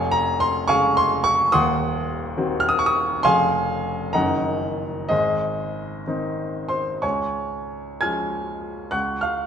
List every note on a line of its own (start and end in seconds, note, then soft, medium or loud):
0.00 1.51 F1 medium
0.00 1.48 F2 medium
0.00 1.55 C#5 medium
0.00 0.69 F5 medium
0.00 0.12 G#5 medium
0.11 0.41 A#5 loud
0.40 0.69 C6 loud
0.68 1.49 C#3 medium
0.68 1.50 G#3 soft
0.68 1.50 G#4 medium
0.68 0.96 F5 medium
0.68 0.96 G#5 medium
0.68 0.97 C#6 loud
0.97 1.25 C6 loud
1.24 1.53 C#6 loud
1.52 3.20 D#1 medium
1.52 3.19 D#2 medium
1.52 2.55 F#5 medium
1.52 2.55 C6 medium
1.52 2.59 D#6 loud
2.37 3.19 D#3 soft
2.37 3.19 C4 medium
2.37 3.19 F#4 medium
2.60 2.68 F6 loud
2.69 2.77 D#6 loud
2.79 2.86 C#6 loud
2.86 2.95 D#6 loud
3.23 4.13 F1 medium
3.23 4.13 F2 medium
3.23 4.12 C#3 soft
3.23 4.12 C#4 soft
3.23 4.12 G#4 medium
3.23 4.11 F5 medium
3.23 4.11 G#5 medium
3.23 4.15 C6 loud
4.13 5.08 F#1 medium
4.13 5.07 F#2 medium
4.13 5.06 D#3 soft
4.13 5.07 C#4 soft
4.13 5.07 D#4 soft
4.13 5.06 D#5 medium
4.13 5.06 F#5 medium
4.13 5.10 A#5 medium
5.09 6.99 G#1 medium
5.09 6.99 G#2 soft
5.09 6.03 G#4 medium
5.09 6.03 C5 medium
5.09 6.06 D#5 medium
6.07 6.99 D#3 soft
6.07 6.99 C4 soft
6.07 6.99 D#4 soft
6.69 7.00 C5 medium
6.69 7.02 C6 medium
7.02 7.98 C#2 soft
7.02 7.97 C#5 medium
7.02 7.97 G#5 medium
7.02 8.01 C#6 medium
8.01 8.90 F3 soft
8.01 8.90 G#3 soft
8.01 8.90 C#4 soft
8.01 8.89 G#5 medium
8.01 8.89 F6 medium
8.01 8.93 G#6 medium
8.91 9.47 C#2 soft
8.91 9.20 F#5 medium
8.91 9.20 C#6 medium
8.91 9.22 F#6 medium
9.21 9.47 F5 medium
9.21 9.47 F6 medium